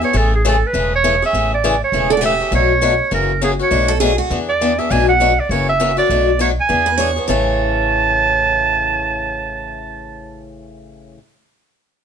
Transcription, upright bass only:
0, 0, Header, 1, 2, 480
1, 0, Start_track
1, 0, Key_signature, 3, "major"
1, 0, Tempo, 298211
1, 225, Time_signature, 4, 2, 24, 8
1, 19391, End_track
2, 0, Start_track
2, 0, Title_t, "Upright bass"
2, 0, Program_c, 0, 32
2, 225, Note_on_c, 0, 33, 89
2, 991, Note_off_c, 0, 33, 0
2, 1182, Note_on_c, 0, 28, 84
2, 1949, Note_off_c, 0, 28, 0
2, 2141, Note_on_c, 0, 33, 78
2, 2908, Note_off_c, 0, 33, 0
2, 3092, Note_on_c, 0, 28, 77
2, 3861, Note_off_c, 0, 28, 0
2, 4049, Note_on_c, 0, 35, 87
2, 4818, Note_off_c, 0, 35, 0
2, 5018, Note_on_c, 0, 30, 90
2, 5783, Note_off_c, 0, 30, 0
2, 5970, Note_on_c, 0, 35, 80
2, 6737, Note_off_c, 0, 35, 0
2, 6929, Note_on_c, 0, 40, 88
2, 7697, Note_off_c, 0, 40, 0
2, 7897, Note_on_c, 0, 35, 87
2, 8662, Note_off_c, 0, 35, 0
2, 8843, Note_on_c, 0, 30, 84
2, 9613, Note_off_c, 0, 30, 0
2, 9810, Note_on_c, 0, 35, 81
2, 10578, Note_off_c, 0, 35, 0
2, 10779, Note_on_c, 0, 40, 85
2, 11544, Note_off_c, 0, 40, 0
2, 11729, Note_on_c, 0, 33, 77
2, 17926, Note_off_c, 0, 33, 0
2, 19391, End_track
0, 0, End_of_file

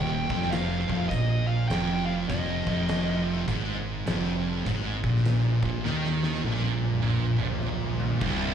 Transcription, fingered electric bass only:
0, 0, Header, 1, 2, 480
1, 0, Start_track
1, 0, Tempo, 591716
1, 899, Time_signature, 4, 2, 24, 8
1, 6928, End_track
2, 0, Start_track
2, 0, Title_t, "Fingered electric bass"
2, 0, Program_c, 0, 33
2, 0, Note_on_c, 0, 27, 99
2, 221, Note_off_c, 0, 27, 0
2, 242, Note_on_c, 0, 29, 85
2, 690, Note_off_c, 0, 29, 0
2, 724, Note_on_c, 0, 29, 94
2, 888, Note_off_c, 0, 29, 0
2, 900, Note_on_c, 0, 34, 90
2, 1347, Note_off_c, 0, 34, 0
2, 1379, Note_on_c, 0, 29, 90
2, 1827, Note_off_c, 0, 29, 0
2, 1864, Note_on_c, 0, 29, 107
2, 2144, Note_off_c, 0, 29, 0
2, 2164, Note_on_c, 0, 29, 88
2, 2788, Note_off_c, 0, 29, 0
2, 2822, Note_on_c, 0, 32, 96
2, 3269, Note_off_c, 0, 32, 0
2, 3304, Note_on_c, 0, 29, 92
2, 3750, Note_off_c, 0, 29, 0
2, 3785, Note_on_c, 0, 32, 99
2, 4064, Note_off_c, 0, 32, 0
2, 4086, Note_on_c, 0, 34, 94
2, 4532, Note_off_c, 0, 34, 0
2, 4565, Note_on_c, 0, 34, 95
2, 4729, Note_off_c, 0, 34, 0
2, 4738, Note_on_c, 0, 39, 96
2, 5187, Note_off_c, 0, 39, 0
2, 5223, Note_on_c, 0, 34, 90
2, 5669, Note_off_c, 0, 34, 0
2, 5699, Note_on_c, 0, 34, 96
2, 5981, Note_off_c, 0, 34, 0
2, 6004, Note_on_c, 0, 34, 92
2, 6628, Note_off_c, 0, 34, 0
2, 6663, Note_on_c, 0, 24, 98
2, 6928, Note_off_c, 0, 24, 0
2, 6928, End_track
0, 0, End_of_file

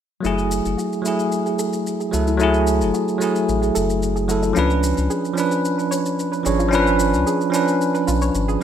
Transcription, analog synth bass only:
0, 0, Header, 1, 2, 480
1, 0, Start_track
1, 0, Key_signature, 3, "minor"
1, 0, Tempo, 540541
1, 216, Time_signature, 4, 2, 24, 8
1, 7663, End_track
2, 0, Start_track
2, 0, Title_t, "Analog synth bass"
2, 0, Program_c, 0, 38
2, 214, Note_on_c, 0, 30, 87
2, 542, Note_off_c, 0, 30, 0
2, 581, Note_on_c, 0, 30, 70
2, 676, Note_off_c, 0, 30, 0
2, 1895, Note_on_c, 0, 37, 84
2, 2499, Note_on_c, 0, 30, 76
2, 2512, Note_off_c, 0, 37, 0
2, 2594, Note_off_c, 0, 30, 0
2, 3097, Note_on_c, 0, 33, 85
2, 3294, Note_off_c, 0, 33, 0
2, 3339, Note_on_c, 0, 30, 84
2, 4023, Note_off_c, 0, 30, 0
2, 4058, Note_on_c, 0, 37, 88
2, 4384, Note_off_c, 0, 37, 0
2, 4422, Note_on_c, 0, 37, 77
2, 4516, Note_off_c, 0, 37, 0
2, 5736, Note_on_c, 0, 32, 87
2, 6343, Note_on_c, 0, 37, 76
2, 6356, Note_off_c, 0, 32, 0
2, 6436, Note_off_c, 0, 37, 0
2, 7175, Note_on_c, 0, 35, 97
2, 7373, Note_off_c, 0, 35, 0
2, 7412, Note_on_c, 0, 32, 85
2, 7611, Note_off_c, 0, 32, 0
2, 7663, End_track
0, 0, End_of_file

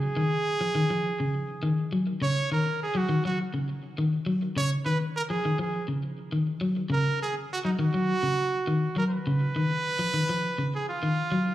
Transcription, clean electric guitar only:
0, 0, Header, 1, 2, 480
1, 0, Start_track
1, 0, Tempo, 586510
1, 1823, Time_signature, 4, 2, 24, 8
1, 9449, End_track
2, 0, Start_track
2, 0, Title_t, "Clean electric guitar"
2, 0, Program_c, 0, 27
2, 135, Note_on_c, 0, 51, 83
2, 296, Note_off_c, 0, 51, 0
2, 497, Note_on_c, 0, 53, 78
2, 578, Note_off_c, 0, 53, 0
2, 615, Note_on_c, 0, 51, 92
2, 697, Note_off_c, 0, 51, 0
2, 740, Note_on_c, 0, 53, 79
2, 899, Note_off_c, 0, 53, 0
2, 982, Note_on_c, 0, 49, 70
2, 1141, Note_off_c, 0, 49, 0
2, 1332, Note_on_c, 0, 51, 95
2, 1493, Note_off_c, 0, 51, 0
2, 1576, Note_on_c, 0, 54, 85
2, 1736, Note_off_c, 0, 54, 0
2, 1813, Note_on_c, 0, 49, 96
2, 1975, Note_off_c, 0, 49, 0
2, 2060, Note_on_c, 0, 51, 73
2, 2219, Note_off_c, 0, 51, 0
2, 2413, Note_on_c, 0, 54, 86
2, 2495, Note_off_c, 0, 54, 0
2, 2530, Note_on_c, 0, 51, 96
2, 2614, Note_off_c, 0, 51, 0
2, 2661, Note_on_c, 0, 54, 82
2, 2820, Note_off_c, 0, 54, 0
2, 2896, Note_on_c, 0, 49, 58
2, 3056, Note_off_c, 0, 49, 0
2, 3260, Note_on_c, 0, 51, 89
2, 3419, Note_off_c, 0, 51, 0
2, 3490, Note_on_c, 0, 54, 85
2, 3652, Note_off_c, 0, 54, 0
2, 3736, Note_on_c, 0, 49, 99
2, 3896, Note_off_c, 0, 49, 0
2, 3977, Note_on_c, 0, 51, 79
2, 4136, Note_off_c, 0, 51, 0
2, 4338, Note_on_c, 0, 53, 80
2, 4418, Note_off_c, 0, 53, 0
2, 4462, Note_on_c, 0, 51, 81
2, 4542, Note_off_c, 0, 51, 0
2, 4575, Note_on_c, 0, 53, 80
2, 4735, Note_off_c, 0, 53, 0
2, 4814, Note_on_c, 0, 49, 63
2, 4974, Note_off_c, 0, 49, 0
2, 5176, Note_on_c, 0, 51, 87
2, 5335, Note_off_c, 0, 51, 0
2, 5410, Note_on_c, 0, 54, 84
2, 5571, Note_off_c, 0, 54, 0
2, 5644, Note_on_c, 0, 49, 95
2, 5807, Note_off_c, 0, 49, 0
2, 6259, Note_on_c, 0, 54, 82
2, 6338, Note_off_c, 0, 54, 0
2, 6376, Note_on_c, 0, 51, 95
2, 6457, Note_off_c, 0, 51, 0
2, 6499, Note_on_c, 0, 54, 80
2, 6658, Note_off_c, 0, 54, 0
2, 6736, Note_on_c, 0, 49, 68
2, 6895, Note_off_c, 0, 49, 0
2, 7099, Note_on_c, 0, 51, 95
2, 7257, Note_off_c, 0, 51, 0
2, 7336, Note_on_c, 0, 54, 85
2, 7495, Note_off_c, 0, 54, 0
2, 7586, Note_on_c, 0, 49, 105
2, 7742, Note_off_c, 0, 49, 0
2, 7824, Note_on_c, 0, 51, 77
2, 7981, Note_off_c, 0, 51, 0
2, 8176, Note_on_c, 0, 53, 79
2, 8256, Note_off_c, 0, 53, 0
2, 8297, Note_on_c, 0, 51, 92
2, 8378, Note_off_c, 0, 51, 0
2, 8424, Note_on_c, 0, 53, 80
2, 8582, Note_off_c, 0, 53, 0
2, 8662, Note_on_c, 0, 49, 65
2, 8820, Note_off_c, 0, 49, 0
2, 9025, Note_on_c, 0, 51, 83
2, 9182, Note_off_c, 0, 51, 0
2, 9261, Note_on_c, 0, 54, 88
2, 9420, Note_off_c, 0, 54, 0
2, 9449, End_track
0, 0, End_of_file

